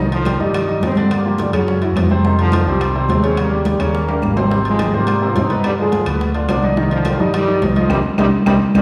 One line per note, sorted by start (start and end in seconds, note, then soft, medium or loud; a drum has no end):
0.00 0.34 C2 medium
0.00 0.12 C3 medium
0.00 0.12 D#3 medium
0.00 0.21 D#3 medium
0.00 0.21 D#4 medium
0.00 0.21 D#5 medium
0.12 0.38 D3 medium
0.12 0.38 F3 loud
0.12 high conga soft
0.12 high timbale medium
0.25 0.38 G3 medium
0.25 0.38 G4 medium
0.25 0.38 A#4 medium
0.25 high bongo medium
0.25 high conga medium
0.25 high timbale medium
0.25 low timbale medium
0.25 claves medium
0.39 0.79 G2 medium
0.39 0.63 D#3 medium
0.39 0.80 D#3 medium
0.39 0.80 G3 medium
0.39 0.63 D#4 medium
0.39 0.63 D#5 medium
0.39 high bongo soft
0.39 high conga soft
0.54 high bongo medium
0.54 high conga soft
0.54 high timbale loud
0.54 claves medium
0.67 0.91 D#3 medium
0.67 0.91 D#4 medium
0.67 0.92 D#5 medium
0.67 high bongo soft
0.67 high conga soft
0.81 1.48 G2 medium
0.81 1.10 G3 medium
0.81 1.10 C4 medium
0.81 high bongo soft
0.81 low bongo medium
0.81 high conga medium
0.81 high timbale medium
0.81 low timbale medium
0.95 1.20 D3 medium
0.95 1.20 D4 medium
0.95 1.20 D5 medium
0.95 high bongo soft
0.95 high conga medium
0.95 high timbale medium
1.10 1.40 G3 medium
1.10 1.40 A#3 loud
1.10 high bongo medium
1.10 high conga soft
1.10 high timbale medium
1.10 claves medium
1.24 1.48 F3 medium
1.24 1.49 F4 medium
1.24 1.49 G4 medium
1.24 high conga soft
1.38 1.54 D3 medium
1.38 1.54 G3 medium
1.38 high bongo medium
1.38 high conga loud
1.38 high timbale medium
1.38 low timbale medium
1.53 1.93 F#2 medium
1.53 1.77 C#3 medium
1.53 2.07 C#3 medium
1.53 2.07 F#3 medium
1.53 1.77 C#4 medium
1.53 1.77 C#5 medium
1.53 high bongo soft
1.53 high conga soft
1.53 high timbale medium
1.53 claves medium
1.67 high bongo medium
1.67 high conga soft
1.81 2.05 E3 medium
1.81 2.05 E4 medium
1.81 2.06 F#4 medium
1.81 high bongo soft
1.81 high conga soft
1.81 high timbale medium
1.95 2.61 F2 medium
1.95 high bongo soft
1.95 low bongo medium
1.95 high conga medium
1.95 high timbale medium
1.95 low timbale medium
1.95 claves medium
2.10 2.22 C3 medium
2.10 2.22 C4 medium
2.10 2.23 C5 medium
2.10 high bongo soft
2.10 high conga medium
2.24 2.38 C3 medium
2.24 2.48 C3 medium
2.24 2.38 D#3 medium
2.24 2.48 C4 medium
2.24 2.48 C5 medium
2.24 high bongo medium
2.24 high conga soft
2.39 2.65 D3 medium
2.39 2.66 F3 loud
2.39 high timbale medium
2.52 2.64 D#3 medium
2.52 2.64 D#4 medium
2.52 2.65 F4 medium
2.52 high bongo medium
2.52 high conga medium
2.52 high timbale loud
2.52 low timbale medium
2.52 claves medium
2.66 3.06 C2 loud
2.66 2.90 C3 medium
2.66 3.07 D#3 medium
2.66 3.07 G3 medium
2.66 2.91 C4 medium
2.66 2.91 C5 medium
2.66 high bongo soft
2.66 high conga soft
2.81 high bongo medium
2.81 high timbale medium
2.81 claves medium
2.95 3.18 C3 medium
2.95 3.19 C4 medium
2.95 3.19 C5 medium
2.95 high bongo soft
2.95 high conga soft
3.09 3.74 D#2 medium
3.09 3.38 G#3 medium
3.09 3.38 C4 medium
3.09 high bongo soft
3.09 low bongo medium
3.09 high conga medium
3.09 high timbale medium
3.09 low timbale medium
3.22 3.46 C#3 medium
3.22 3.46 C#4 medium
3.22 3.47 C#5 medium
3.22 high bongo soft
3.22 high conga medium
3.22 high timbale medium
3.37 3.67 G3 medium
3.37 3.67 A#3 medium
3.37 high bongo medium
3.37 high conga soft
3.37 high timbale medium
3.37 claves medium
3.51 3.74 G3 medium
3.51 3.75 G4 medium
3.51 3.75 A#4 medium
3.51 high conga soft
3.65 3.80 D#3 medium
3.65 3.80 G3 medium
3.65 high bongo medium
3.65 high conga medium
3.65 high timbale medium
3.65 low timbale medium
3.79 4.19 D#2 medium
3.79 4.03 C#3 medium
3.79 4.37 G3 medium
3.79 4.38 A#3 loud
3.79 4.03 C#4 medium
3.79 4.03 C#5 medium
3.79 high bongo soft
3.79 high conga soft
3.79 high timbale medium
3.79 claves medium
3.94 high bongo medium
3.94 high conga soft
4.08 4.31 G3 medium
4.08 4.31 G4 medium
4.08 4.31 A#4 medium
4.08 high bongo soft
4.08 high conga soft
4.08 high timbale medium
4.22 4.87 G#1 medium
4.22 high bongo soft
4.22 low bongo medium
4.22 high conga medium
4.22 claves medium
4.36 4.48 C3 medium
4.36 4.48 C4 medium
4.36 4.48 C5 medium
4.36 high bongo soft
4.36 high conga medium
4.36 low timbale medium
4.50 4.73 C3 medium
4.50 4.58 D#3 medium
4.50 4.59 G3 medium
4.50 4.74 C4 medium
4.50 4.74 C5 medium
4.50 high bongo medium
4.50 high conga soft
4.65 4.93 F3 medium
4.65 4.93 G#3 loud
4.65 high conga soft
4.65 high timbale medium
4.79 4.90 D#3 medium
4.79 4.91 D#4 medium
4.79 4.91 G4 medium
4.79 high bongo medium
4.79 high conga medium
4.79 high timbale loud
4.79 low timbale medium
4.79 claves medium
4.93 5.32 G#2 medium
4.93 5.17 C3 medium
4.93 5.29 G3 medium
4.93 5.29 A#3 loud
4.93 5.17 C4 medium
4.93 5.17 C5 medium
4.93 high bongo soft
4.93 high conga soft
5.07 high bongo medium
5.07 high conga soft
5.07 high timbale medium
5.07 claves medium
5.22 5.45 C3 medium
5.22 5.45 C4 medium
5.22 5.45 C5 medium
5.22 high bongo soft
5.22 high conga soft
5.30 5.36 F4 medium
5.35 6.01 G2 medium
5.35 5.65 C4 medium
5.35 5.65 D#4 loud
5.35 high bongo soft
5.35 low bongo medium
5.35 high conga medium
5.35 high timbale medium
5.35 low timbale medium
5.50 5.73 B2 medium
5.50 5.73 B3 medium
5.50 5.73 B4 medium
5.50 high bongo soft
5.50 high conga medium
5.50 high timbale medium
5.64 5.72 D3 medium
5.64 5.72 G3 medium
5.64 high bongo medium
5.64 high conga soft
5.64 high timbale medium
5.64 claves medium
5.78 6.02 D3 medium
5.78 6.05 F3 medium
5.78 6.05 G#3 loud
5.78 6.02 D4 medium
5.78 6.02 F4 medium
5.78 high conga soft
5.92 high bongo medium
5.92 high conga medium
5.92 high timbale medium
5.92 low timbale medium
6.06 6.46 D2 medium
6.06 6.30 B2 medium
6.06 6.30 B3 medium
6.06 6.30 B4 medium
6.06 high bongo soft
6.06 high conga soft
6.06 high timbale medium
6.06 claves medium
6.20 high bongo medium
6.20 high conga soft
6.34 6.58 D3 medium
6.34 6.58 D4 medium
6.34 6.58 F4 medium
6.34 high bongo soft
6.34 high timbale medium
6.48 7.14 C2 medium
6.48 6.76 B3 medium
6.48 6.75 D4 loud
6.48 high bongo soft
6.48 low bongo medium
6.48 high conga medium
6.48 high timbale medium
6.48 low timbale medium
6.48 claves medium
6.62 6.75 D#3 medium
6.62 6.75 D#4 medium
6.62 6.75 D#5 medium
6.62 high bongo soft
6.62 high conga medium
6.77 6.91 C3 medium
6.77 7.00 D#3 medium
6.77 6.90 D#3 loud
6.77 7.00 D#4 medium
6.77 7.01 D#5 medium
6.77 high bongo medium
6.77 high conga soft
6.91 7.18 D3 medium
6.91 7.18 F3 loud
6.91 high conga soft
6.91 high timbale medium
7.05 7.17 G3 medium
7.05 7.17 G4 medium
7.05 7.17 A#4 medium
7.05 high bongo medium
7.05 high conga medium
7.05 high timbale medium
7.05 low timbale medium
7.05 claves medium
7.19 7.59 G2 medium
7.19 7.43 D#3 medium
7.19 7.33 D#3 medium
7.19 7.33 G3 medium
7.19 7.43 D#4 medium
7.19 7.43 D#5 medium
7.19 high bongo soft
7.19 high conga soft
7.33 7.60 D#3 medium
7.33 7.60 G3 loud
7.33 high bongo medium
7.33 high conga soft
7.33 high timbale loud
7.33 claves medium
7.47 7.71 D#3 medium
7.47 7.71 D#4 medium
7.47 7.71 D#5 medium
7.47 high bongo soft
7.47 high conga soft
7.62 7.88 C2 medium
7.62 high bongo soft
7.62 low bongo medium
7.62 high conga medium
7.62 high timbale medium
7.62 low timbale medium
7.76 7.90 D3 medium
7.76 7.88 D#3 medium
7.76 7.90 F3 medium
7.76 7.88 D#4 medium
7.76 7.88 D#5 medium
7.76 high bongo soft
7.76 high conga medium
7.76 high timbale medium
7.89 8.01 C2 loud
7.89 7.98 C3 medium
7.89 7.97 D#3 medium
7.89 7.98 G3 medium
7.89 7.99 C4 medium
7.89 7.99 D#4 medium
7.89 7.99 G4 medium
7.89 high bongo medium
7.89 high conga medium
7.89 high timbale loud
7.89 claves medium
8.18 8.29 C2 medium
8.18 8.25 C3 medium
8.18 8.26 D#3 medium
8.18 8.25 G3 medium
8.18 8.27 C4 medium
8.18 8.27 D#4 medium
8.18 8.27 G4 medium
8.18 high bongo loud
8.18 high conga medium
8.18 high timbale loud
8.18 claves medium
8.46 8.57 C2 medium
8.46 8.54 C3 medium
8.46 8.54 D#3 loud
8.46 8.53 G3 medium
8.46 8.56 C4 loud
8.46 8.56 D#4 medium
8.46 8.56 G4 medium
8.46 high bongo medium
8.46 high conga loud
8.46 high timbale loud
8.46 claves medium
8.75 8.82 C2 medium
8.75 8.82 C3 medium
8.75 8.82 D#3 medium
8.75 8.82 G3 medium
8.75 8.82 C4 medium
8.75 8.82 D#4 medium
8.75 8.82 G4 medium
8.75 high bongo medium
8.75 high conga medium
8.75 high timbale loud
8.75 claves medium